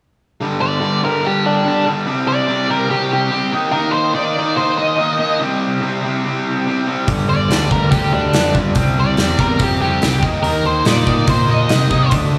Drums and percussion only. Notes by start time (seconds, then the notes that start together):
7.08 kick, open hi-hat
7.51 snare, open hi-hat
7.71 kick
7.92 kick, open hi-hat
8.33 snare, open hi-hat
8.55 kick
8.75 kick, open hi-hat
9.17 snare, open hi-hat
9.39 kick
9.59 kick, open hi-hat
10.02 snare, open hi-hat
10.23 kick
10.44 open hi-hat
10.85 snare, open hi-hat
11.07 kick
11.27 kick, open hi-hat
11.69 snare, open hi-hat
11.91 kick
12.11 kick, open hi-hat